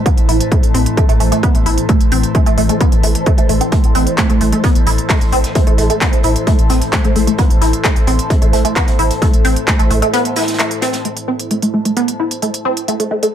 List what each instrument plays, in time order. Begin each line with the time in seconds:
Already playing: synth drone A2 E3, analog synth pad E4 A4 C5 A5
0.06 synth arpeggio sound B3, kick, closed hi-hat
0.17 sub bass A1, closed hi-hat
0.29 sub bass A1, synth arpeggio sound E4, open hi-hat
0.41 closed hi-hat
0.52 synth arpeggio sound A3, kick, closed hi-hat
0.63 sub bass A1, closed hi-hat
0.74 sub bass A1, synth arpeggio sound C4, open hi-hat
0.86 closed hi-hat
0.97 synth arpeggio sound A3, kick, closed hi-hat
1.09 sub bass A1, synth arpeggio sound A3, closed hi-hat
1.20 sub bass A1, synth arpeggio sound A3, open hi-hat
1.32 synth arpeggio sound A3, closed hi-hat
1.43 synth arpeggio sound B3, kick, closed hi-hat
1.55 sub bass A1, closed hi-hat
1.66 sub bass A1, synth arpeggio sound E4, open hi-hat
1.78 closed hi-hat
1.89 synth arpeggio sound A3, kick, closed hi-hat
2.01 sub bass A1, closed hi-hat
2.12 sub bass A1, synth arpeggio sound C4, open hi-hat
2.23 closed hi-hat
2.35 synth arpeggio sound A3, kick, closed hi-hat
2.46 sub bass A1, synth arpeggio sound A3, closed hi-hat
2.58 sub bass A1, synth arpeggio sound A3, open hi-hat
2.69 synth arpeggio sound A3, closed hi-hat
2.80 synth arpeggio sound B3, kick, closed hi-hat
2.92 sub bass A1, closed hi-hat
3.03 sub bass A1, synth arpeggio sound A3, open hi-hat
3.15 closed hi-hat
3.26 synth arpeggio sound A3, kick, closed hi-hat
3.38 sub bass A1, synth arpeggio sound A3, closed hi-hat
3.49 sub bass A1, synth arpeggio sound A3, open hi-hat
3.61 synth arpeggio sound C4, closed hi-hat
3.72 synth arpeggio sound A3, kick, closed hi-hat
3.84 sub bass A1, closed hi-hat
3.95 sub bass A1, synth arpeggio sound C4, closed hi-hat, open hi-hat
4.07 closed hi-hat
4.18 synth arpeggio sound A3, kick, snare, clap, closed hi-hat
4.30 sub bass A1, synth arpeggio sound A3, closed hi-hat
4.41 sub bass A1, synth arpeggio sound A3, closed hi-hat, open hi-hat
4.53 synth arpeggio sound A3, closed hi-hat
4.64 synth arpeggio sound B3, kick, closed hi-hat
4.75 sub bass A1, closed hi-hat
4.87 sub bass A1, synth arpeggio sound E4, closed hi-hat, open hi-hat
4.98 closed hi-hat
5.09 synth arpeggio sound A3, kick, snare, clap, closed hi-hat, open hi-hat
5.21 sub bass A1, closed hi-hat
5.32 sub bass A1, synth arpeggio sound C4, closed hi-hat, open hi-hat
5.44 snare, closed hi-hat
5.55 synth arpeggio sound A3, kick, closed hi-hat
5.67 sub bass A1, synth arpeggio sound A3, closed hi-hat
5.78 sub bass A1, synth arpeggio sound A3, closed hi-hat, open hi-hat
5.90 synth arpeggio sound A3, closed hi-hat
6.01 synth arpeggio sound B3, kick, snare, clap, closed hi-hat
6.13 sub bass A1, closed hi-hat
6.23 sub bass A1, synth arpeggio sound E4, closed hi-hat, open hi-hat
6.36 closed hi-hat
6.47 synth arpeggio sound A3, kick, closed hi-hat
6.59 sub bass A1, closed hi-hat
6.69 sub bass A1, synth arpeggio sound C4, snare, closed hi-hat, open hi-hat
6.81 closed hi-hat
6.93 synth arpeggio sound A3, kick, snare, clap, closed hi-hat
7.04 sub bass A1, synth arpeggio sound A3, closed hi-hat
7.16 sub bass A1, synth arpeggio sound A3, closed hi-hat, open hi-hat
7.27 synth arpeggio sound A3, closed hi-hat
7.38 synth arpeggio sound B3, kick, closed hi-hat
7.50 sub bass A1, closed hi-hat
7.61 sub bass A1, synth arpeggio sound E4, closed hi-hat, open hi-hat
7.73 closed hi-hat
7.84 synth arpeggio sound A3, kick, snare, clap, closed hi-hat
7.96 sub bass A1, closed hi-hat
8.07 sub bass A1, synth arpeggio sound C4, closed hi-hat, open hi-hat
8.19 closed hi-hat
8.30 synth arpeggio sound A3, kick, closed hi-hat
8.42 sub bass A1, synth arpeggio sound A3, closed hi-hat
8.53 sub bass A1, synth arpeggio sound A3, closed hi-hat, open hi-hat
8.65 synth arpeggio sound A3, closed hi-hat
8.76 synth arpeggio sound B3, kick, clap, closed hi-hat
8.88 sub bass A1, closed hi-hat
8.99 sub bass A1, synth arpeggio sound E4, open hi-hat
9.11 closed hi-hat
9.22 synth arpeggio sound A3, kick, closed hi-hat
9.33 sub bass A1, closed hi-hat
9.45 sub bass A1, synth arpeggio sound C4, closed hi-hat, open hi-hat
9.56 closed hi-hat
9.67 synth arpeggio sound A3, kick, snare, clap, closed hi-hat
9.79 sub bass A1, synth arpeggio sound A3, closed hi-hat
9.90 sub bass A1, synth arpeggio sound A3, closed hi-hat, open hi-hat
10.02 synth arpeggio sound A3, closed hi-hat
10.13 synth arpeggio sound B3, closed hi-hat
10.25 closed hi-hat
10.36 synth arpeggio sound E4, snare, closed hi-hat, open hi-hat
10.42 snare, closed hi-hat
10.48 snare, closed hi-hat
10.54 snare, closed hi-hat
10.59 synth arpeggio sound A3, snare, clap, closed hi-hat
10.71 closed hi-hat
10.81 synth arpeggio sound C4, snare, closed hi-hat, open hi-hat
10.93 snare, closed hi-hat
11.05 synth arpeggio sound A3, analog synth pad E4, closed hi-hat
11.17 closed hi-hat
11.28 synth arpeggio sound C4
11.39 analog synth pad A4 A5, closed hi-hat
11.51 synth arpeggio sound A3, closed hi-hat
11.62 synth arpeggio sound A3, closed hi-hat
11.69 analog synth pad C5
11.74 synth arpeggio sound A3
11.85 synth arpeggio sound A3, closed hi-hat
11.97 synth arpeggio sound B3, closed hi-hat
12.08 closed hi-hat
12.20 synth arpeggio sound E4
12.31 closed hi-hat
12.42 synth arpeggio sound A3, closed hi-hat
12.54 closed hi-hat
12.65 synth arpeggio sound C4
12.77 closed hi-hat
12.88 synth arpeggio sound A3, closed hi-hat
13.00 synth arpeggio sound A3, closed hi-hat
13.11 synth arpeggio sound A3
13.23 synth arpeggio sound A3, closed hi-hat